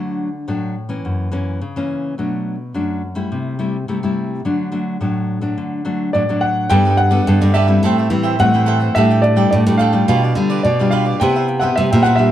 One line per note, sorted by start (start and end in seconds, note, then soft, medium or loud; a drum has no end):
0.00 0.45 D3 medium
0.00 0.28 F#3 medium
0.00 0.28 A3 medium
0.00 0.28 D4 soft
0.48 1.02 A2 medium
0.48 0.74 F#3 medium
0.48 0.75 A3 medium
0.48 0.75 D4 medium
0.89 1.28 E3 medium
0.89 1.28 A#3 medium
0.89 1.28 C#4 medium
1.05 1.59 F#2 medium
1.31 1.59 E3 medium
1.31 1.59 A#3 medium
1.31 1.59 C#4 medium
1.61 2.15 C#3 medium
1.76 2.14 E3 medium
1.76 2.14 A#3 medium
1.76 2.14 C#4 medium
2.18 2.72 B2 medium
2.18 2.55 F#3 soft
2.18 2.55 A3 soft
2.18 2.55 D4 soft
2.74 3.28 F#2 medium
2.74 3.01 F#3 medium
2.74 3.01 A3 soft
2.74 3.01 D4 medium
3.15 3.54 G3 medium
3.15 3.54 A3 medium
3.15 3.54 E4 medium
3.32 3.85 C3 medium
3.59 3.76 G3 medium
3.59 3.76 A3 medium
3.59 3.76 E4 medium
3.88 4.42 C3 medium
3.88 3.98 G3 soft
3.88 3.98 A3 medium
3.88 3.98 E4 medium
4.03 4.40 G3 medium
4.03 4.41 A3 medium
4.03 4.41 E4 medium
4.45 4.98 D3 medium
4.45 4.68 F#3 medium
4.45 4.69 A3 soft
4.45 4.69 D4 medium
4.72 4.96 F#3 medium
4.72 4.96 A3 medium
4.72 4.96 D4 medium
5.01 5.54 A2 medium
5.01 5.39 F#3 medium
5.01 5.39 A3 medium
5.01 5.39 D4 medium
5.41 5.80 F#3 medium
5.41 5.80 A3 medium
5.41 5.81 D4 medium
5.58 6.11 D3 medium
5.85 6.09 F#3 medium
5.85 6.09 A3 medium
5.85 6.09 D4 medium
6.13 6.68 A2 medium
6.13 6.23 F#3 medium
6.13 6.23 A3 medium
6.13 6.23 D4 medium
6.13 6.43 D5 medium
6.29 6.66 F#3 medium
6.29 6.67 A3 medium
6.29 6.67 D4 medium
6.41 6.71 F#5 medium
6.69 7.18 G2 medium
6.69 7.24 G3 medium
6.69 7.08 B3 medium
6.69 7.09 D4 medium
6.69 6.83 G4 medium
6.69 6.83 A4 medium
6.69 7.09 A4 medium
6.69 6.84 B4 medium
6.69 6.84 D5 medium
6.69 6.89 G5 loud
6.85 6.97 A4 soft
6.85 6.97 B4 soft
6.85 6.97 D5 medium
6.90 6.98 G5 medium
6.97 7.50 F#5 loud
6.97 muted cavaquinho stroke soft
7.11 7.21 B3 medium
7.11 7.22 D4 medium
7.11 7.22 A4 medium
7.11 7.39 A4 medium
7.11 7.39 B4 medium
7.11 7.39 D5 medium
7.27 7.39 G2 loud
7.27 7.81 D3 soft
7.27 7.53 B3 medium
7.27 7.54 D4 medium
7.27 7.54 A4 medium
7.41 7.77 G2 medium
7.41 7.53 A4 soft
7.41 7.54 B4 soft
7.41 7.54 D5 soft
7.54 7.68 G4 medium
7.54 7.68 A4 medium
7.54 7.67 B4 medium
7.54 7.66 D5 medium
7.54 8.07 E5 medium
7.67 8.06 G3 medium
7.67 8.06 C4 medium
7.67 8.07 E4 medium
7.67 7.82 A4 soft
7.67 7.82 B4 soft
7.67 7.81 D5 soft
7.83 8.07 A2 medium
7.83 8.37 A2 medium
7.83 7.97 A4 medium
7.83 7.97 C5 medium
7.83 7.97 E5 medium
7.83 7.97 G5 medium
7.98 8.09 C5 soft
7.98 8.09 E5 soft
7.98 8.10 G5 soft
8.10 8.35 E3 medium
8.10 8.35 G3 medium
8.10 8.35 C4 medium
8.10 8.35 E4 medium
8.10 muted cavaquinho stroke soft
8.23 8.52 C5 medium
8.23 8.52 E5 medium
8.23 8.52 G5 medium
8.39 8.88 A2 medium
8.39 8.93 E3 medium
8.39 8.49 G3 medium
8.39 8.49 C4 medium
8.39 8.49 E4 medium
8.39 8.98 F#5 loud
8.54 8.92 G3 medium
8.54 8.92 C4 medium
8.54 8.92 E4 medium
8.54 8.66 C5 soft
8.54 8.66 E5 soft
8.54 8.67 G5 medium
8.66 8.80 A4 medium
8.66 8.80 C5 medium
8.66 8.79 E5 medium
8.66 8.78 G5 medium
8.80 8.95 C5 soft
8.80 8.94 E5 soft
8.80 8.94 G5 soft
8.95 9.49 A2 medium
8.95 9.44 A2 medium
8.95 9.34 G3 medium
8.95 9.34 D4 medium
8.95 9.09 D4 medium
8.95 9.34 G4 medium
8.95 9.10 A4 medium
8.95 9.10 D5 medium
8.95 9.22 E5 medium
8.95 9.09 G5 medium
9.10 9.22 A4 soft
9.10 9.23 D5 soft
9.10 9.23 G5 medium
9.22 9.49 D5 medium
9.22 muted cavaquinho stroke soft
9.36 9.61 G3 medium
9.36 9.61 D4 medium
9.36 9.61 G4 medium
9.36 9.65 A4 medium
9.36 9.65 D5 medium
9.36 9.65 G5 medium
9.51 10.06 A2 medium
9.51 9.64 A2 medium
9.51 9.57 D5 medium
9.67 10.02 A2 loud
9.67 9.91 G3 medium
9.67 9.91 D4 medium
9.67 9.91 G4 medium
9.67 9.78 A4 soft
9.67 9.79 D5 soft
9.67 9.80 G5 soft
9.78 9.93 D4 medium
9.78 9.93 A4 medium
9.78 9.92 D5 medium
9.78 10.31 F5 medium
9.78 9.92 G5 medium
9.92 10.31 G3 medium
9.92 10.32 D4 medium
9.92 10.32 F4 medium
9.92 10.08 A4 soft
9.92 10.07 D5 soft
9.92 10.07 G5 medium
10.08 10.32 B2 medium
10.08 10.63 B2 medium
10.08 10.21 F4 medium
10.08 10.22 G4 medium
10.08 10.22 B4 medium
10.08 10.22 D5 medium
10.23 10.36 G4 soft
10.23 10.36 B4 soft
10.23 10.36 D5 soft
10.35 10.60 D3 medium
10.35 10.63 G3 medium
10.35 10.63 D4 medium
10.35 10.63 F4 medium
10.35 muted cavaquinho stroke soft
10.50 10.78 G4 medium
10.50 10.78 B4 medium
10.50 10.77 D5 medium
10.63 11.13 B2 medium
10.63 11.19 B2 medium
10.63 10.90 D5 medium
10.79 11.17 G3 medium
10.79 11.18 D4 medium
10.79 11.18 F4 medium
10.79 10.91 G4 soft
10.79 10.91 B4 soft
10.79 10.92 D5 medium
10.91 11.05 F4 medium
10.91 11.05 G4 medium
10.91 11.05 B4 medium
10.91 11.04 D5 medium
10.91 11.18 F5 medium
11.05 11.20 G4 soft
11.05 11.20 B4 soft
11.05 11.19 D5 soft
11.20 11.69 C3 loud
11.20 11.75 C3 medium
11.20 11.59 B3 medium
11.20 11.34 E4 medium
11.20 11.59 E4 medium
11.20 11.60 G4 medium
11.20 11.35 B4 medium
11.20 11.34 C5 medium
11.20 11.35 E5 medium
11.20 11.60 G5 medium
11.36 11.48 B4 soft
11.36 11.47 C5 soft
11.36 11.48 E5 soft
11.48 muted cavaquinho stroke soft
11.60 11.87 B3 medium
11.60 11.87 E4 medium
11.60 11.87 G4 medium
11.60 11.90 B4 medium
11.60 11.90 C5 medium
11.60 11.89 E5 medium
11.60 11.75 F#5 medium
11.76 11.90 C3 loud
11.76 12.17 G3 medium
11.76 11.81 E5 medium
11.90 12.28 A#2 medium
11.90 12.16 B3 medium
11.90 12.16 E4 medium
11.90 12.16 G4 medium
11.90 12.05 B4 soft
11.90 12.04 C5 soft
11.90 12.05 E5 medium
11.90 12.04 G5 medium
12.03 12.18 E4 medium
12.03 12.17 B4 medium
12.03 12.18 C5 medium
12.03 12.17 E5 medium
12.03 12.19 F#5 loud
12.16 12.32 G3 medium
12.16 12.32 D4 medium
12.16 12.32 G4 medium
12.16 12.32 B4 soft
12.16 12.32 C5 soft
12.16 12.31 E5 medium
12.16 12.32 E5 medium